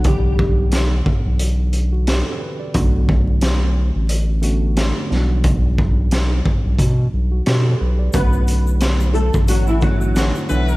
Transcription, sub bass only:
X:1
M:4/4
L:1/16
Q:"Swing 16ths" 1/4=89
K:Bm
V:1 name="Sub bass" clef=bass
B,,,6- B,,, B,,,6 z3 | B,,,6- B,,, A,,,6 z B,,,2- | B,,,6- B,,, B,,, B,,2 B,,,2 B,,2 B,,,2 | B,,,6- B,,, A,,,6 z B,,,2 |]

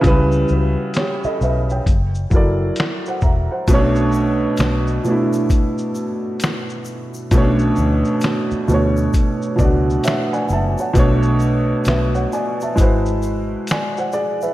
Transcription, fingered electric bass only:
X:1
M:4/4
L:1/16
Q:"Swing 16ths" 1/4=66
K:Bdor
V:1 name="Fingered electric bass" clef=bass
C,,2 C,, z3 B,,,2 F,,,2 F,,,2 z2 E,,, z | B,,,4 B,,,2 z8 z2 | B,,,2 D,, z3 D,,2 z2 C,,2 z2 F,,, z | B,,,4 B,,,2 z2 G,,,4 z4 |]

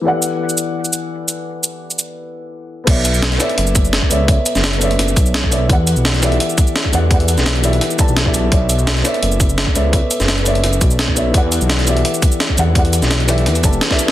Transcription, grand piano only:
X:1
M:4/4
L:1/16
Q:1/4=170
K:Bm
V:1 name="Grand piano"
[E,B,GAdf]16- | [E,B,GAdf]16 | [B,Acde]6 [B,Acde]8 [B,Acde]2 | [B,Acde]6 [B,Acde]8 [B,Acde]2 |
[E,B,GAdf]6 [E,B,GAde]8 [E,B,GAdf]2 | [E,B,GAdf]6 [E,B,GAde]4 [E,B,GAda] z2 [E,B,GAde]3 | [B,Acde]6 [B,Acde]8 [B,Acde]2 | [B,Acde]6 [B,Acde]8 [B,Acde]2 |
[E,B,GAdf]6 [E,B,GAde]8 [E,B,GAdf]2 | [E,B,GAdf]6 [E,B,GAde]4 [E,B,GAda] z2 [E,B,GAde]3 |]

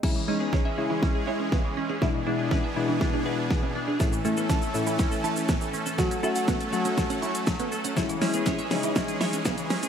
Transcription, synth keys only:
X:1
M:4/4
L:1/8
Q:1/4=121
K:C#m
V:1 name="Synth keys"
[G,CE] [G,CD] z [G,CE]3 z2 | [B,,G,=DE] [B,,G,DE] z [B,,G,DE]3 z2 | [A,CE] [A,CE] z [A,CE]3 z2 | [A,CF] [A,CF] z [A,CF]3 z2 |
[G,CE] [G,CE] z [G,CD]3 z2 |]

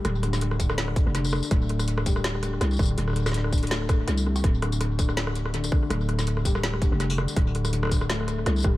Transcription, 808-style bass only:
X:1
M:4/4
L:1/16
Q:"Swing 16ths" 1/4=164
K:Dm
V:1 name="808-style bass" clef=bass
D,,,8- D,,,3 F,,,4 z | D,,,12 C,,2 D,,,2 | D,,,12 C,,4 | D,,,12- D,,,2 z2 |
D,,,8- D,,,3 F,,,4 z | D,,,12 C,,2 D,,,2 |]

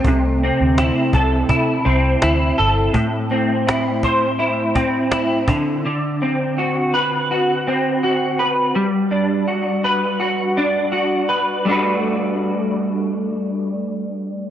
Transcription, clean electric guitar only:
X:1
M:4/4
L:1/8
Q:"Swing 16ths" 1/4=83
K:G
V:1 name="Clean electric guitar"
C, C E A E C E A | A,, C E c E C E D, | D, C F B F C F B | G, D F B F D F B |
[G,A,DFB]8 |]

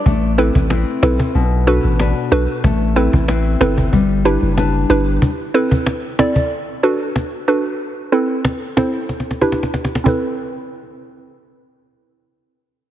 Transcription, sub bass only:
X:1
M:4/4
L:1/16
Q:1/4=93
K:Ador
V:1 name="Sub bass" clef=bass
A,,,3 A,,,2 z B,,, z B,,,3 A,,,2 z B,,, z | A,,,3 A,,,3 G,,,2 G,,,3 F,,,3 G,,,2 | z16 | z16 |
z16 |]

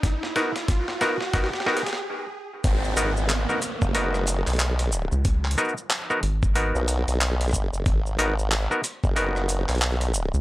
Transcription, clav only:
X:1
M:4/4
L:1/16
Q:"Swing 16ths" 1/4=92
K:G#m
V:1 name="Clav"
z2 [B,DFA] z3 [B,DFA] z [B,DFA] z [B,DFA] z4 z | z2 [B,DFA] z2 [B,DFA] z2 [B,DFA]8- | [B,DFA]2 [B,DFA] z2 [B,DFA] z2 [B,DFA]8- | [B,DFA]2 [B,DFA] z2 [B,DFA] z2 [B,DFA]8 |]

